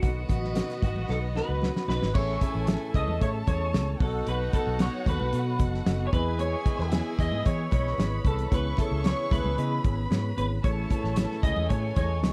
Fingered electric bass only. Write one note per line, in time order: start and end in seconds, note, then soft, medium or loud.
0.03 0.24 B1 medium
0.30 0.60 A1 medium
0.83 0.93 G#1 medium
0.96 1.06 A1 medium
1.09 1.40 B1 medium
1.49 1.69 C#2 medium
1.88 1.99 B1 medium
2.02 2.12 G#1 medium
2.16 2.36 A1 loud
2.55 2.75 A1 medium
2.95 3.05 C#2 medium
3.07 3.18 E2 medium
3.21 3.42 A2 medium
3.48 3.76 E2 loud
3.74 3.95 C#2 loud
4.00 4.21 B1 medium
4.27 4.48 B1 medium
4.67 4.87 B1 loud
5.07 5.17 D#2 medium
5.20 5.30 B1 medium
5.33 5.61 B2 medium
5.60 5.80 F#1 medium
5.86 6.07 F#1 medium
6.13 6.54 E2 loud
6.79 7.00 E2 medium
7.19 7.29 E2 medium
7.32 7.42 G#2 medium
7.46 7.67 E3 loud
7.73 7.93 B1 medium
7.98 8.19 G#1 medium
8.25 8.46 C2 medium
8.52 8.72 C#2 loud
8.91 9.12 C#2 loud
9.32 9.42 C#2 medium
9.44 9.55 C#2 medium
9.58 9.78 C#3 medium
9.85 10.05 G#1 medium
10.11 10.31 G#2 medium
10.37 10.58 G#1 medium
10.64 10.85 A1 loud
11.04 11.24 A1 medium
11.43 11.54 C#2 medium
11.57 11.67 E2 medium
11.71 11.91 A2 medium
11.97 12.23 E2 loud
12.23 12.33 C#2 medium